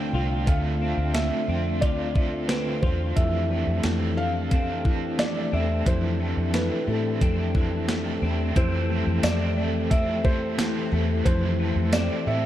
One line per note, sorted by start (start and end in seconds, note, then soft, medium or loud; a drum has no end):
0.00 0.13 D3 medium
0.00 3.13 D3 medium
0.00 0.13 A3 medium
0.00 0.47 A3 medium
0.00 3.13 A3 medium
0.00 0.14 C4 medium
0.00 0.81 C4 medium
0.00 8.52 C4 medium
0.00 8.52 D4 medium
0.00 0.13 F4 medium
0.00 0.14 F4 medium
0.00 3.13 F4 medium
0.00 0.12 A4 medium
0.00 0.50 G5 loud
0.13 0.45 C2 medium
0.13 0.46 C4 soft
0.13 0.47 F4 soft
0.13 1.82 F4 medium
0.13 0.47 A4 soft
0.46 0.95 D2 medium
0.46 0.80 D3 medium
0.46 0.81 A3 medium
0.46 1.14 A3 medium
0.46 0.81 C4 medium
0.46 0.80 F4 medium
0.46 0.79 A4 medium
0.46 1.17 F5 medium
0.46 kick medium
0.46 closed hi-hat medium
0.80 1.48 C4 medium
0.80 1.14 C4 soft
0.80 1.14 F4 soft
0.80 1.14 A4 soft
0.97 1.29 D2 medium
1.13 1.48 D3 medium
1.13 1.48 A3 medium
1.13 2.15 A3 medium
1.13 1.48 C4 medium
1.13 1.48 F4 medium
1.13 1.46 A4 medium
1.13 1.83 E5 medium
1.13 snare medium
1.13 closed hi-hat medium
1.48 1.82 F2 medium
1.48 2.49 C4 medium
1.48 1.81 C4 soft
1.48 1.82 F4 soft
1.48 1.82 A4 medium
1.81 2.79 D2 medium
1.81 2.15 A3 medium
1.81 2.16 C4 medium
1.81 2.83 F4 medium
1.81 2.16 F4 medium
1.81 2.14 A4 medium
1.81 2.51 D5 medium
1.81 kick medium
1.81 closed hi-hat medium
2.15 3.50 A3 medium
2.15 2.49 C4 soft
2.15 2.49 F4 soft
2.15 2.49 A4 soft
2.15 kick medium
2.48 2.83 D3 medium
2.48 2.83 A3 medium
2.48 4.51 C4 medium
2.48 2.83 C4 medium
2.48 2.83 F4 medium
2.48 2.81 A4 medium
2.48 2.83 B4 medium
2.48 snare medium
2.48 closed hi-hat medium
2.82 3.15 E2 medium
2.82 3.17 C4 soft
2.82 3.88 F4 medium
2.82 3.17 F4 soft
2.82 3.16 A4 soft
2.82 3.14 C5 medium
2.82 kick medium
3.16 3.65 F2 medium
3.16 3.84 E3 medium
3.16 3.50 F3 medium
3.16 8.52 A3 medium
3.16 3.51 A3 medium
3.16 3.51 C4 medium
3.16 3.50 E4 medium
3.16 8.52 G4 medium
3.16 8.52 A4 medium
3.16 3.48 A4 medium
3.16 3.80 E5 medium
3.16 kick medium
3.16 closed hi-hat medium
3.50 4.18 A3 medium
3.50 3.83 C4 soft
3.50 3.84 E4 soft
3.50 3.84 A4 soft
3.67 3.83 F2 medium
3.83 5.49 F2 medium
3.83 4.85 E3 medium
3.83 4.17 F3 medium
3.83 4.18 A3 medium
3.83 4.18 C4 medium
3.83 4.18 E4 medium
3.83 4.15 A4 medium
3.83 snare medium
3.83 closed hi-hat medium
4.17 5.19 A3 medium
4.17 4.50 C4 soft
4.17 4.51 A4 soft
4.17 5.22 F5 loud
4.50 4.85 A3 medium
4.50 5.52 C4 medium
4.50 4.85 C4 medium
4.50 4.83 A4 medium
4.50 kick medium
4.50 closed hi-hat medium
4.84 5.86 E3 medium
4.84 5.18 C4 soft
4.84 5.19 A4 soft
4.84 kick medium
5.18 5.52 F3 medium
5.18 5.53 A3 medium
5.18 6.19 A3 medium
5.18 5.53 C4 medium
5.18 5.52 E4 medium
5.18 5.50 A4 medium
5.18 5.54 D5 medium
5.18 snare medium
5.18 closed hi-hat medium
5.52 5.85 E2 medium
5.52 7.21 C4 medium
5.52 5.85 C4 soft
5.52 5.86 E4 soft
5.52 5.86 A4 soft
5.52 5.88 E5 medium
5.85 6.34 F2 medium
5.85 6.53 E3 medium
5.85 6.20 F3 medium
5.85 6.20 A3 medium
5.85 6.20 C4 medium
5.85 6.19 E4 medium
5.85 6.18 A4 medium
5.85 6.56 C5 medium
5.85 kick loud
5.85 closed hi-hat medium
6.19 6.87 A3 medium
6.19 6.52 C4 soft
6.19 6.53 E4 soft
6.19 6.53 A4 soft
6.37 6.69 F2 medium
6.52 7.55 E3 medium
6.52 6.87 F3 medium
6.52 6.87 A3 medium
6.52 6.87 C4 medium
6.52 6.87 E4 medium
6.52 6.86 A4 medium
6.52 6.86 B4 medium
6.52 snare medium
6.52 closed hi-hat medium
6.87 7.19 A2 medium
6.87 7.88 A3 medium
6.87 7.20 C4 soft
6.87 7.21 E4 soft
6.87 7.21 A4 medium
6.87 7.85 A4 medium
7.21 8.18 F2 medium
7.21 7.55 A3 medium
7.21 8.22 C4 medium
7.21 7.55 C4 soft
7.21 7.55 E4 medium
7.21 7.54 A4 medium
7.21 kick medium
7.21 closed hi-hat medium
7.55 8.55 E3 medium
7.55 7.88 C4 soft
7.55 7.89 E4 soft
7.55 7.89 A4 soft
7.55 kick medium
7.88 8.22 F3 medium
7.88 8.89 A3 medium
7.88 8.22 A3 medium
7.88 8.23 C4 medium
7.88 8.22 E4 medium
7.88 8.21 A4 medium
7.88 snare loud
7.88 closed hi-hat medium
8.22 8.54 E2 medium
8.22 9.23 C4 medium
8.22 8.56 C4 soft
8.22 8.56 E4 soft
8.22 8.56 A4 soft
8.55 9.04 F2 loud
8.55 10.57 E3 medium
8.55 8.89 F3 medium
8.55 8.90 A3 medium
8.55 12.46 A3 medium
8.55 12.46 C4 medium
8.55 8.90 C4 medium
8.55 8.90 E4 medium
8.55 12.46 G4 medium
8.55 12.46 A4 medium
8.55 8.88 A4 medium
8.55 9.26 C5 medium
8.55 kick loud
8.55 closed hi-hat medium
8.89 9.56 A3 medium
8.89 9.23 C4 soft
8.89 9.24 E4 soft
8.89 9.23 A4 medium
9.07 9.23 F2 medium
9.23 10.88 F2 medium
9.23 9.57 A3 medium
9.23 9.89 C4 medium
9.23 9.58 C4 medium
9.23 9.57 E4 medium
9.23 9.56 A4 medium
9.23 9.93 D5 medium
9.23 snare loud
9.23 closed hi-hat medium
9.23 tambourine medium
9.57 10.24 A3 medium
9.57 9.91 C4 soft
9.57 9.91 E4 medium
9.57 9.91 A4 medium
9.90 10.25 F3 medium
9.90 10.25 A3 medium
9.90 11.92 C4 medium
9.90 10.25 C4 medium
9.90 10.24 E4 medium
9.90 10.23 A4 medium
9.90 10.25 E5 medium
9.90 kick medium
9.90 closed hi-hat medium
10.24 10.92 A3 medium
10.24 10.58 C4 soft
10.24 10.59 E4 soft
10.24 10.58 A4 medium
10.24 10.88 C5 medium
10.24 kick medium
10.58 11.25 E3 medium
10.58 10.92 A3 medium
10.58 10.92 C4 medium
10.58 10.92 E4 medium
10.58 10.90 A4 medium
10.58 snare loud
10.58 closed hi-hat medium
10.58 tambourine medium
10.92 11.24 E2 medium
10.92 11.59 A3 medium
10.92 11.25 C4 soft
10.92 11.26 E4 soft
10.92 11.25 A4 medium
11.25 11.74 F2 loud
11.25 12.46 E3 medium
11.25 11.59 F3 medium
11.25 11.59 A3 medium
11.25 11.60 C4 medium
11.25 11.60 E4 medium
11.25 11.58 A4 medium
11.25 11.95 C5 medium
11.25 kick loud
11.25 closed hi-hat medium
11.59 12.27 A3 medium
11.59 11.92 C4 soft
11.59 11.94 E4 soft
11.59 11.93 A4 medium
11.76 12.08 F2 medium
11.92 12.26 A3 medium
11.92 12.46 C4 medium
11.92 12.27 C4 medium
11.92 12.27 E4 medium
11.92 12.25 A4 medium
11.92 12.28 D5 medium
11.92 snare medium
11.92 closed hi-hat medium
11.92 tambourine medium
12.26 12.46 A2 medium
12.26 12.46 A3 medium
12.26 12.46 C4 soft
12.26 12.46 E4 medium
12.26 12.46 A4 medium
12.26 12.46 E5 medium